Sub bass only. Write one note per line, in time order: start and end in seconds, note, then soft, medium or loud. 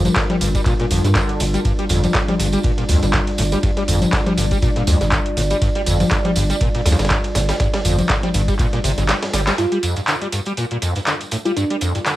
0.41 0.58 G1 loud
0.91 0.99 G1 medium
1.04 1.19 G2 medium
1.40 1.57 G1 medium
1.90 2.06 G1 loud
2.40 2.56 G1 loud
2.89 2.98 D2 medium
3.03 3.17 G1 medium
3.39 3.55 G1 medium
3.88 4.05 G1 loud
4.38 4.54 G1 loud
4.87 4.96 D2 medium
5.01 5.16 G1 medium
5.37 5.54 G1 medium
5.86 6.03 G1 loud
6.36 6.53 G1 loud
6.86 6.94 D2 medium
6.99 7.14 G1 medium
7.35 7.52 G1 loud
7.85 8.01 G1 loud
8.34 8.51 G1 loud
8.84 8.93 G1 medium
8.98 9.12 G1 loud
9.34 9.50 G1 medium